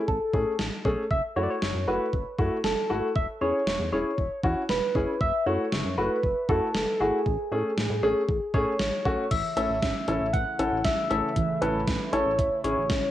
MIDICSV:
0, 0, Header, 1, 7, 480
1, 0, Start_track
1, 0, Tempo, 512821
1, 1034, Time_signature, 4, 2, 24, 8
1, 12270, End_track
2, 0, Start_track
2, 0, Title_t, "Soft synth lead"
2, 0, Program_c, 0, 80
2, 73, Note_on_c, 0, 69, 97
2, 794, Note_off_c, 0, 69, 0
2, 1035, Note_on_c, 0, 76, 112
2, 1143, Note_off_c, 0, 76, 0
2, 1276, Note_on_c, 0, 73, 99
2, 1340, Note_on_c, 0, 74, 86
2, 1354, Note_off_c, 0, 73, 0
2, 1407, Note_on_c, 0, 73, 106
2, 1421, Note_off_c, 0, 74, 0
2, 1756, Note_on_c, 0, 71, 90
2, 1771, Note_off_c, 0, 73, 0
2, 2236, Note_off_c, 0, 71, 0
2, 2475, Note_on_c, 0, 69, 95
2, 2921, Note_off_c, 0, 69, 0
2, 2955, Note_on_c, 0, 76, 113
2, 3063, Note_off_c, 0, 76, 0
2, 3196, Note_on_c, 0, 73, 108
2, 3642, Note_off_c, 0, 73, 0
2, 3677, Note_on_c, 0, 73, 95
2, 4122, Note_off_c, 0, 73, 0
2, 4398, Note_on_c, 0, 71, 107
2, 4876, Note_on_c, 0, 76, 116
2, 4890, Note_off_c, 0, 71, 0
2, 5115, Note_on_c, 0, 73, 112
2, 5129, Note_off_c, 0, 76, 0
2, 5595, Note_on_c, 0, 71, 107
2, 5609, Note_off_c, 0, 73, 0
2, 6070, Note_off_c, 0, 71, 0
2, 6075, Note_on_c, 0, 69, 99
2, 6554, Note_on_c, 0, 68, 100
2, 6568, Note_off_c, 0, 69, 0
2, 7988, Note_off_c, 0, 68, 0
2, 7994, Note_on_c, 0, 73, 103
2, 8715, Note_on_c, 0, 76, 106
2, 8729, Note_off_c, 0, 73, 0
2, 8948, Note_off_c, 0, 76, 0
2, 8953, Note_on_c, 0, 76, 102
2, 9177, Note_off_c, 0, 76, 0
2, 9193, Note_on_c, 0, 76, 104
2, 9672, Note_on_c, 0, 78, 119
2, 9686, Note_off_c, 0, 76, 0
2, 10147, Note_off_c, 0, 78, 0
2, 10152, Note_on_c, 0, 76, 104
2, 10376, Note_off_c, 0, 76, 0
2, 10391, Note_on_c, 0, 76, 116
2, 10872, Note_on_c, 0, 71, 107
2, 10886, Note_off_c, 0, 76, 0
2, 11346, Note_off_c, 0, 71, 0
2, 11351, Note_on_c, 0, 73, 104
2, 11799, Note_off_c, 0, 73, 0
2, 11832, Note_on_c, 0, 73, 97
2, 12270, Note_off_c, 0, 73, 0
2, 12270, End_track
3, 0, Start_track
3, 0, Title_t, "Grand piano"
3, 0, Program_c, 1, 0
3, 315, Note_on_c, 1, 68, 81
3, 316, Note_on_c, 1, 57, 71
3, 316, Note_on_c, 1, 61, 65
3, 477, Note_off_c, 1, 68, 0
3, 478, Note_off_c, 1, 57, 0
3, 478, Note_off_c, 1, 61, 0
3, 795, Note_on_c, 1, 57, 87
3, 795, Note_on_c, 1, 61, 79
3, 795, Note_on_c, 1, 68, 93
3, 957, Note_off_c, 1, 57, 0
3, 957, Note_off_c, 1, 61, 0
3, 958, Note_off_c, 1, 68, 0
3, 1274, Note_on_c, 1, 57, 74
3, 1274, Note_on_c, 1, 64, 67
3, 1274, Note_on_c, 1, 66, 80
3, 1437, Note_off_c, 1, 57, 0
3, 1437, Note_off_c, 1, 64, 0
3, 1437, Note_off_c, 1, 66, 0
3, 1756, Note_on_c, 1, 57, 71
3, 1756, Note_on_c, 1, 64, 66
3, 1756, Note_on_c, 1, 66, 80
3, 1918, Note_off_c, 1, 57, 0
3, 1918, Note_off_c, 1, 64, 0
3, 1918, Note_off_c, 1, 66, 0
3, 2235, Note_on_c, 1, 57, 71
3, 2235, Note_on_c, 1, 64, 67
3, 2235, Note_on_c, 1, 66, 80
3, 2397, Note_off_c, 1, 66, 0
3, 2398, Note_off_c, 1, 57, 0
3, 2398, Note_off_c, 1, 64, 0
3, 2713, Note_on_c, 1, 57, 72
3, 2713, Note_on_c, 1, 64, 65
3, 2713, Note_on_c, 1, 66, 82
3, 2877, Note_off_c, 1, 57, 0
3, 2877, Note_off_c, 1, 64, 0
3, 2877, Note_off_c, 1, 66, 0
3, 3194, Note_on_c, 1, 61, 75
3, 3194, Note_on_c, 1, 64, 65
3, 3194, Note_on_c, 1, 68, 80
3, 3357, Note_off_c, 1, 61, 0
3, 3357, Note_off_c, 1, 64, 0
3, 3357, Note_off_c, 1, 68, 0
3, 3674, Note_on_c, 1, 61, 72
3, 3674, Note_on_c, 1, 64, 67
3, 3674, Note_on_c, 1, 68, 81
3, 3837, Note_off_c, 1, 61, 0
3, 3837, Note_off_c, 1, 64, 0
3, 3837, Note_off_c, 1, 68, 0
3, 4155, Note_on_c, 1, 64, 67
3, 4156, Note_on_c, 1, 61, 73
3, 4156, Note_on_c, 1, 66, 82
3, 4318, Note_off_c, 1, 61, 0
3, 4318, Note_off_c, 1, 64, 0
3, 4318, Note_off_c, 1, 66, 0
3, 4635, Note_on_c, 1, 61, 74
3, 4636, Note_on_c, 1, 64, 67
3, 4636, Note_on_c, 1, 68, 80
3, 4798, Note_off_c, 1, 61, 0
3, 4798, Note_off_c, 1, 64, 0
3, 4798, Note_off_c, 1, 68, 0
3, 5115, Note_on_c, 1, 57, 73
3, 5115, Note_on_c, 1, 64, 69
3, 5115, Note_on_c, 1, 66, 83
3, 5277, Note_off_c, 1, 57, 0
3, 5277, Note_off_c, 1, 64, 0
3, 5278, Note_off_c, 1, 66, 0
3, 5596, Note_on_c, 1, 57, 72
3, 5596, Note_on_c, 1, 66, 83
3, 5597, Note_on_c, 1, 64, 65
3, 5758, Note_off_c, 1, 57, 0
3, 5758, Note_off_c, 1, 64, 0
3, 5758, Note_off_c, 1, 66, 0
3, 6076, Note_on_c, 1, 57, 74
3, 6077, Note_on_c, 1, 64, 68
3, 6077, Note_on_c, 1, 66, 80
3, 6238, Note_off_c, 1, 57, 0
3, 6238, Note_off_c, 1, 64, 0
3, 6238, Note_off_c, 1, 66, 0
3, 6557, Note_on_c, 1, 66, 81
3, 6558, Note_on_c, 1, 57, 75
3, 6558, Note_on_c, 1, 64, 67
3, 6719, Note_off_c, 1, 57, 0
3, 6719, Note_off_c, 1, 64, 0
3, 6719, Note_off_c, 1, 66, 0
3, 7038, Note_on_c, 1, 57, 75
3, 7038, Note_on_c, 1, 61, 69
3, 7038, Note_on_c, 1, 68, 82
3, 7199, Note_off_c, 1, 57, 0
3, 7199, Note_off_c, 1, 61, 0
3, 7199, Note_off_c, 1, 68, 0
3, 7515, Note_on_c, 1, 57, 85
3, 7516, Note_on_c, 1, 61, 80
3, 7516, Note_on_c, 1, 68, 96
3, 7678, Note_off_c, 1, 57, 0
3, 7678, Note_off_c, 1, 61, 0
3, 7678, Note_off_c, 1, 68, 0
3, 7995, Note_on_c, 1, 61, 82
3, 7995, Note_on_c, 1, 68, 94
3, 7996, Note_on_c, 1, 57, 87
3, 8158, Note_off_c, 1, 57, 0
3, 8158, Note_off_c, 1, 61, 0
3, 8158, Note_off_c, 1, 68, 0
3, 8474, Note_on_c, 1, 61, 77
3, 8474, Note_on_c, 1, 66, 96
3, 8475, Note_on_c, 1, 57, 86
3, 8637, Note_off_c, 1, 57, 0
3, 8637, Note_off_c, 1, 61, 0
3, 8637, Note_off_c, 1, 66, 0
3, 8955, Note_on_c, 1, 61, 74
3, 8955, Note_on_c, 1, 64, 65
3, 8955, Note_on_c, 1, 69, 78
3, 9117, Note_off_c, 1, 61, 0
3, 9117, Note_off_c, 1, 64, 0
3, 9117, Note_off_c, 1, 69, 0
3, 9435, Note_on_c, 1, 61, 74
3, 9435, Note_on_c, 1, 64, 66
3, 9435, Note_on_c, 1, 69, 78
3, 9597, Note_off_c, 1, 61, 0
3, 9597, Note_off_c, 1, 64, 0
3, 9597, Note_off_c, 1, 69, 0
3, 9915, Note_on_c, 1, 61, 72
3, 9915, Note_on_c, 1, 64, 69
3, 9915, Note_on_c, 1, 69, 84
3, 10077, Note_off_c, 1, 61, 0
3, 10077, Note_off_c, 1, 64, 0
3, 10078, Note_off_c, 1, 69, 0
3, 10395, Note_on_c, 1, 61, 73
3, 10395, Note_on_c, 1, 64, 68
3, 10395, Note_on_c, 1, 69, 81
3, 10557, Note_off_c, 1, 61, 0
3, 10557, Note_off_c, 1, 64, 0
3, 10558, Note_off_c, 1, 69, 0
3, 10873, Note_on_c, 1, 69, 82
3, 10874, Note_on_c, 1, 61, 73
3, 10874, Note_on_c, 1, 64, 69
3, 11036, Note_off_c, 1, 69, 0
3, 11037, Note_off_c, 1, 61, 0
3, 11037, Note_off_c, 1, 64, 0
3, 11354, Note_on_c, 1, 64, 70
3, 11355, Note_on_c, 1, 61, 72
3, 11355, Note_on_c, 1, 69, 84
3, 11517, Note_off_c, 1, 61, 0
3, 11517, Note_off_c, 1, 64, 0
3, 11517, Note_off_c, 1, 69, 0
3, 11833, Note_on_c, 1, 61, 76
3, 11833, Note_on_c, 1, 64, 70
3, 11833, Note_on_c, 1, 68, 82
3, 11996, Note_off_c, 1, 64, 0
3, 11997, Note_off_c, 1, 61, 0
3, 11997, Note_off_c, 1, 68, 0
3, 12270, End_track
4, 0, Start_track
4, 0, Title_t, "Synth pluck"
4, 0, Program_c, 2, 84
4, 8715, Note_on_c, 2, 52, 90
4, 8877, Note_off_c, 2, 52, 0
4, 8955, Note_on_c, 2, 57, 84
4, 9117, Note_off_c, 2, 57, 0
4, 9195, Note_on_c, 2, 61, 83
4, 9357, Note_off_c, 2, 61, 0
4, 9435, Note_on_c, 2, 64, 86
4, 9597, Note_off_c, 2, 64, 0
4, 9675, Note_on_c, 2, 76, 97
4, 9837, Note_off_c, 2, 76, 0
4, 9915, Note_on_c, 2, 64, 86
4, 10077, Note_off_c, 2, 64, 0
4, 10154, Note_on_c, 2, 61, 89
4, 10317, Note_off_c, 2, 61, 0
4, 10394, Note_on_c, 2, 57, 83
4, 10557, Note_off_c, 2, 57, 0
4, 10634, Note_on_c, 2, 52, 94
4, 10797, Note_off_c, 2, 52, 0
4, 10874, Note_on_c, 2, 57, 81
4, 11037, Note_off_c, 2, 57, 0
4, 11114, Note_on_c, 2, 61, 85
4, 11277, Note_off_c, 2, 61, 0
4, 11354, Note_on_c, 2, 64, 82
4, 11516, Note_off_c, 2, 64, 0
4, 11594, Note_on_c, 2, 76, 94
4, 11757, Note_off_c, 2, 76, 0
4, 11835, Note_on_c, 2, 64, 85
4, 11997, Note_off_c, 2, 64, 0
4, 12075, Note_on_c, 2, 61, 93
4, 12237, Note_off_c, 2, 61, 0
4, 12270, End_track
5, 0, Start_track
5, 0, Title_t, "Analog synth pad"
5, 0, Program_c, 3, 89
5, 8714, Note_on_c, 3, 64, 88
5, 8715, Note_on_c, 3, 49, 81
5, 8715, Note_on_c, 3, 52, 76
5, 8715, Note_on_c, 3, 57, 75
5, 12270, Note_off_c, 3, 49, 0
5, 12270, Note_off_c, 3, 52, 0
5, 12270, Note_off_c, 3, 57, 0
5, 12270, Note_off_c, 3, 64, 0
5, 12270, End_track
6, 0, Start_track
6, 0, Title_t, "Analog synth bass"
6, 0, Program_c, 4, 38
6, 74, Note_on_c, 4, 33, 100
6, 181, Note_off_c, 4, 33, 0
6, 312, Note_on_c, 4, 45, 104
6, 420, Note_off_c, 4, 45, 0
6, 555, Note_on_c, 4, 33, 90
6, 661, Note_off_c, 4, 33, 0
6, 795, Note_on_c, 4, 35, 91
6, 902, Note_off_c, 4, 35, 0
6, 1035, Note_on_c, 4, 30, 104
6, 1142, Note_off_c, 4, 30, 0
6, 1276, Note_on_c, 4, 42, 108
6, 1382, Note_off_c, 4, 42, 0
6, 1516, Note_on_c, 4, 30, 98
6, 1622, Note_off_c, 4, 30, 0
6, 1636, Note_on_c, 4, 42, 98
6, 1742, Note_off_c, 4, 42, 0
6, 1756, Note_on_c, 4, 30, 94
6, 1862, Note_off_c, 4, 30, 0
6, 1995, Note_on_c, 4, 30, 96
6, 2101, Note_off_c, 4, 30, 0
6, 2232, Note_on_c, 4, 42, 100
6, 2340, Note_off_c, 4, 42, 0
6, 2475, Note_on_c, 4, 30, 97
6, 2582, Note_off_c, 4, 30, 0
6, 2715, Note_on_c, 4, 32, 89
6, 2822, Note_off_c, 4, 32, 0
6, 2955, Note_on_c, 4, 28, 113
6, 3061, Note_off_c, 4, 28, 0
6, 3195, Note_on_c, 4, 40, 103
6, 3301, Note_off_c, 4, 40, 0
6, 3435, Note_on_c, 4, 28, 96
6, 3541, Note_off_c, 4, 28, 0
6, 3555, Note_on_c, 4, 40, 104
6, 3661, Note_off_c, 4, 40, 0
6, 3675, Note_on_c, 4, 28, 103
6, 3781, Note_off_c, 4, 28, 0
6, 3914, Note_on_c, 4, 28, 106
6, 4021, Note_off_c, 4, 28, 0
6, 4152, Note_on_c, 4, 40, 101
6, 4260, Note_off_c, 4, 40, 0
6, 4395, Note_on_c, 4, 28, 89
6, 4502, Note_off_c, 4, 28, 0
6, 4634, Note_on_c, 4, 30, 95
6, 4741, Note_off_c, 4, 30, 0
6, 4875, Note_on_c, 4, 30, 97
6, 4981, Note_off_c, 4, 30, 0
6, 5114, Note_on_c, 4, 42, 98
6, 5221, Note_off_c, 4, 42, 0
6, 5356, Note_on_c, 4, 30, 107
6, 5462, Note_off_c, 4, 30, 0
6, 5474, Note_on_c, 4, 42, 96
6, 5581, Note_off_c, 4, 42, 0
6, 5595, Note_on_c, 4, 30, 106
6, 5702, Note_off_c, 4, 30, 0
6, 5835, Note_on_c, 4, 30, 108
6, 5942, Note_off_c, 4, 30, 0
6, 6073, Note_on_c, 4, 42, 107
6, 6180, Note_off_c, 4, 42, 0
6, 6315, Note_on_c, 4, 30, 89
6, 6422, Note_off_c, 4, 30, 0
6, 6555, Note_on_c, 4, 32, 101
6, 6662, Note_off_c, 4, 32, 0
6, 6795, Note_on_c, 4, 33, 102
6, 6902, Note_off_c, 4, 33, 0
6, 7035, Note_on_c, 4, 45, 99
6, 7141, Note_off_c, 4, 45, 0
6, 7275, Note_on_c, 4, 33, 96
6, 7381, Note_off_c, 4, 33, 0
6, 7394, Note_on_c, 4, 45, 97
6, 7501, Note_off_c, 4, 45, 0
6, 7515, Note_on_c, 4, 33, 93
6, 7622, Note_off_c, 4, 33, 0
6, 7755, Note_on_c, 4, 33, 110
6, 7862, Note_off_c, 4, 33, 0
6, 7992, Note_on_c, 4, 45, 98
6, 8100, Note_off_c, 4, 45, 0
6, 8235, Note_on_c, 4, 33, 91
6, 8342, Note_off_c, 4, 33, 0
6, 8475, Note_on_c, 4, 35, 97
6, 8581, Note_off_c, 4, 35, 0
6, 8715, Note_on_c, 4, 33, 99
6, 8822, Note_off_c, 4, 33, 0
6, 8955, Note_on_c, 4, 33, 98
6, 9062, Note_off_c, 4, 33, 0
6, 9075, Note_on_c, 4, 33, 94
6, 9181, Note_off_c, 4, 33, 0
6, 9195, Note_on_c, 4, 33, 99
6, 9302, Note_off_c, 4, 33, 0
6, 9435, Note_on_c, 4, 33, 100
6, 9541, Note_off_c, 4, 33, 0
6, 9555, Note_on_c, 4, 33, 98
6, 9661, Note_off_c, 4, 33, 0
6, 9674, Note_on_c, 4, 33, 109
6, 9781, Note_off_c, 4, 33, 0
6, 9914, Note_on_c, 4, 33, 106
6, 10021, Note_off_c, 4, 33, 0
6, 10035, Note_on_c, 4, 33, 104
6, 10142, Note_off_c, 4, 33, 0
6, 10152, Note_on_c, 4, 33, 101
6, 10260, Note_off_c, 4, 33, 0
6, 10395, Note_on_c, 4, 33, 103
6, 10502, Note_off_c, 4, 33, 0
6, 10634, Note_on_c, 4, 33, 111
6, 10741, Note_off_c, 4, 33, 0
6, 10874, Note_on_c, 4, 33, 104
6, 10981, Note_off_c, 4, 33, 0
6, 10994, Note_on_c, 4, 33, 96
6, 11101, Note_off_c, 4, 33, 0
6, 11115, Note_on_c, 4, 33, 103
6, 11222, Note_off_c, 4, 33, 0
6, 11353, Note_on_c, 4, 33, 106
6, 11461, Note_off_c, 4, 33, 0
6, 11473, Note_on_c, 4, 33, 96
6, 11580, Note_off_c, 4, 33, 0
6, 11594, Note_on_c, 4, 33, 107
6, 11701, Note_off_c, 4, 33, 0
6, 11833, Note_on_c, 4, 33, 97
6, 11941, Note_off_c, 4, 33, 0
6, 11954, Note_on_c, 4, 33, 89
6, 12061, Note_off_c, 4, 33, 0
6, 12072, Note_on_c, 4, 33, 104
6, 12180, Note_off_c, 4, 33, 0
6, 12270, End_track
7, 0, Start_track
7, 0, Title_t, "Drums"
7, 74, Note_on_c, 9, 36, 88
7, 168, Note_off_c, 9, 36, 0
7, 312, Note_on_c, 9, 36, 107
7, 406, Note_off_c, 9, 36, 0
7, 551, Note_on_c, 9, 38, 109
7, 645, Note_off_c, 9, 38, 0
7, 795, Note_on_c, 9, 36, 89
7, 889, Note_off_c, 9, 36, 0
7, 1035, Note_on_c, 9, 36, 108
7, 1129, Note_off_c, 9, 36, 0
7, 1517, Note_on_c, 9, 38, 102
7, 1610, Note_off_c, 9, 38, 0
7, 1995, Note_on_c, 9, 36, 86
7, 2088, Note_off_c, 9, 36, 0
7, 2232, Note_on_c, 9, 36, 106
7, 2326, Note_off_c, 9, 36, 0
7, 2472, Note_on_c, 9, 38, 109
7, 2565, Note_off_c, 9, 38, 0
7, 2955, Note_on_c, 9, 36, 107
7, 3048, Note_off_c, 9, 36, 0
7, 3437, Note_on_c, 9, 38, 106
7, 3530, Note_off_c, 9, 38, 0
7, 3914, Note_on_c, 9, 36, 87
7, 4008, Note_off_c, 9, 36, 0
7, 4152, Note_on_c, 9, 36, 108
7, 4246, Note_off_c, 9, 36, 0
7, 4392, Note_on_c, 9, 38, 109
7, 4485, Note_off_c, 9, 38, 0
7, 4635, Note_on_c, 9, 36, 90
7, 4728, Note_off_c, 9, 36, 0
7, 4875, Note_on_c, 9, 36, 106
7, 4968, Note_off_c, 9, 36, 0
7, 5358, Note_on_c, 9, 38, 106
7, 5451, Note_off_c, 9, 38, 0
7, 5835, Note_on_c, 9, 36, 89
7, 5929, Note_off_c, 9, 36, 0
7, 6073, Note_on_c, 9, 36, 107
7, 6166, Note_off_c, 9, 36, 0
7, 6313, Note_on_c, 9, 38, 110
7, 6407, Note_off_c, 9, 38, 0
7, 6796, Note_on_c, 9, 36, 112
7, 6889, Note_off_c, 9, 36, 0
7, 7278, Note_on_c, 9, 38, 102
7, 7372, Note_off_c, 9, 38, 0
7, 7755, Note_on_c, 9, 36, 89
7, 7849, Note_off_c, 9, 36, 0
7, 7993, Note_on_c, 9, 36, 107
7, 8086, Note_off_c, 9, 36, 0
7, 8231, Note_on_c, 9, 38, 115
7, 8325, Note_off_c, 9, 38, 0
7, 8475, Note_on_c, 9, 36, 86
7, 8569, Note_off_c, 9, 36, 0
7, 8715, Note_on_c, 9, 36, 106
7, 8715, Note_on_c, 9, 42, 76
7, 8715, Note_on_c, 9, 49, 94
7, 8808, Note_off_c, 9, 49, 0
7, 8809, Note_off_c, 9, 36, 0
7, 8809, Note_off_c, 9, 42, 0
7, 8956, Note_on_c, 9, 42, 74
7, 9049, Note_off_c, 9, 42, 0
7, 9195, Note_on_c, 9, 36, 115
7, 9196, Note_on_c, 9, 42, 67
7, 9197, Note_on_c, 9, 38, 106
7, 9289, Note_off_c, 9, 36, 0
7, 9289, Note_off_c, 9, 42, 0
7, 9290, Note_off_c, 9, 38, 0
7, 9433, Note_on_c, 9, 42, 66
7, 9526, Note_off_c, 9, 42, 0
7, 9674, Note_on_c, 9, 36, 111
7, 9675, Note_on_c, 9, 42, 70
7, 9768, Note_off_c, 9, 36, 0
7, 9769, Note_off_c, 9, 42, 0
7, 9915, Note_on_c, 9, 42, 91
7, 10009, Note_off_c, 9, 42, 0
7, 10151, Note_on_c, 9, 38, 114
7, 10152, Note_on_c, 9, 36, 114
7, 10154, Note_on_c, 9, 42, 74
7, 10245, Note_off_c, 9, 36, 0
7, 10245, Note_off_c, 9, 38, 0
7, 10247, Note_off_c, 9, 42, 0
7, 10395, Note_on_c, 9, 42, 68
7, 10489, Note_off_c, 9, 42, 0
7, 10634, Note_on_c, 9, 36, 108
7, 10634, Note_on_c, 9, 42, 79
7, 10728, Note_off_c, 9, 36, 0
7, 10728, Note_off_c, 9, 42, 0
7, 10875, Note_on_c, 9, 42, 74
7, 10969, Note_off_c, 9, 42, 0
7, 11115, Note_on_c, 9, 36, 116
7, 11116, Note_on_c, 9, 42, 67
7, 11117, Note_on_c, 9, 38, 107
7, 11209, Note_off_c, 9, 36, 0
7, 11209, Note_off_c, 9, 42, 0
7, 11210, Note_off_c, 9, 38, 0
7, 11353, Note_on_c, 9, 42, 68
7, 11447, Note_off_c, 9, 42, 0
7, 11594, Note_on_c, 9, 36, 106
7, 11596, Note_on_c, 9, 42, 72
7, 11688, Note_off_c, 9, 36, 0
7, 11689, Note_off_c, 9, 42, 0
7, 11835, Note_on_c, 9, 42, 90
7, 11929, Note_off_c, 9, 42, 0
7, 12072, Note_on_c, 9, 36, 120
7, 12072, Note_on_c, 9, 38, 113
7, 12074, Note_on_c, 9, 42, 76
7, 12166, Note_off_c, 9, 36, 0
7, 12166, Note_off_c, 9, 38, 0
7, 12168, Note_off_c, 9, 42, 0
7, 12270, End_track
0, 0, End_of_file